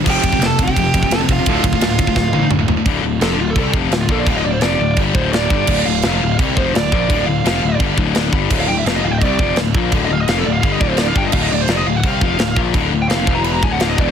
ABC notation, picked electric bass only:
X:1
M:4/4
L:1/8
Q:1/4=170
K:Dm
V:1 name="Picked electric bass" clef=bass
F,,, F,,, F,,, F,,, F,,, F,,, F,,, F,,, | D,,, D,,, D,,,2 D,,, A,,, D,,,2 | D,,, D,,, F,,, D,,, C,, F,,, D,,, B,,, | D,,, D,,, F,,, D,,, G,,, D,,,2 G,,, |
D,,, D,,, F,,, D,,, C,, F,,, D,,, B,,, | D,,, D,,, F,,, D,,, G,,, D,,,2 G,,, | D,,, D,,, F,,, D,,, C,, F,,, D,,, B,,, | D,,, D,,, F,,, D,,, G,,, D,,,2 G,,, |
D,,, D,,, F,,, D,,, C,, F,,, D,,, B,,, | D,,, D,,, F,,, E,,,2 D,,,2 E,,, |]